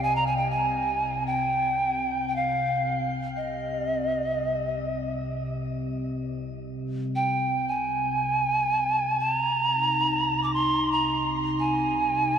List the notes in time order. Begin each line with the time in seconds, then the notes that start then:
Already playing: C2 C3
0.03 G#5
0.16 A#5
0.26 G#5
0.37 G5
0.50 G#5
1.26 G5
2.28 G5
2.36 F5
3.36 D#5
4.70 C2 C3
7.16 G5
7.68 G#5
9.19 A5
9.37 A#5
9.68 D#4
10.43 D6
10.54 C6
10.92 A#5
11.60 G#5